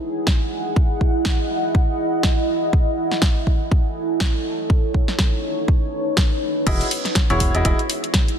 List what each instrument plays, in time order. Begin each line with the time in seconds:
Already playing: ambient pad E4 G#4 D#5 F#5
0.27 kick, snare
0.76 kick
1.01 kick
1.25 kick, snare
1.75 kick
2.23 kick, snare
2.73 kick
2.92 ambient pad A4
3.11 snare
3.22 kick, snare
3.47 kick
3.51 ambient pad C#5
3.72 kick
4.20 kick, snare
4.45 ambient pad D#4
4.70 kick
4.94 kick
5.08 snare
5.16 ambient pad B4, kick, snare
5.45 ambient pad A5
5.68 kick
6.17 kick, snare
6.67 analog synth bass E1, upright piano E4 F#4 G#4 D#5, ambient pad E4, kick, closed hi-hat, crash
6.81 open hi-hat
6.91 open hi-hat
6.99 ambient pad G#4
7.05 snare, closed hi-hat
7.15 kick, snare, closed hi-hat
7.30 analog synth bass E1, upright piano E4 F#4 G#4 C#5, closed hi-hat
7.40 ambient pad D#5, kick, open hi-hat
7.45 ambient pad F#5
7.55 analog synth bass E1, upright piano E4 F#4 G#4 D#5, closed hi-hat
7.65 analog synth bass E1, upright piano E4 F#4 G#4 D#5, kick, closed hi-hat
7.79 closed hi-hat
7.90 open hi-hat
8.04 closed hi-hat
8.14 kick, snare, closed hi-hat
8.28 closed hi-hat